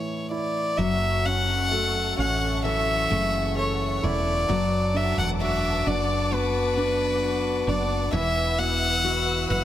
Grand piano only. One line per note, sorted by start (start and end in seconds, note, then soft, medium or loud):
0.00 0.74 A2 soft
0.00 0.76 E3 soft
0.00 0.30 E4 soft
0.31 0.77 E4 soft
0.78 4.45 F#3 medium
1.25 2.16 C#4 soft
1.71 2.62 A4 medium
2.17 3.99 C#4 medium
2.64 3.55 A4 medium
3.11 4.45 C#3 medium
3.57 4.46 A4 medium
4.03 4.47 E4 medium
4.49 8.09 F#3 medium
4.94 5.85 D4 soft
5.41 6.30 F#4 medium
5.87 6.76 D4 medium
6.32 7.21 F#4 medium
6.78 7.66 D4 medium
7.23 8.10 F#4 medium
7.68 8.12 D4 medium
8.13 9.64 E3 medium
8.59 9.64 B3 soft
9.05 9.64 F#4 medium
9.49 9.64 B4 medium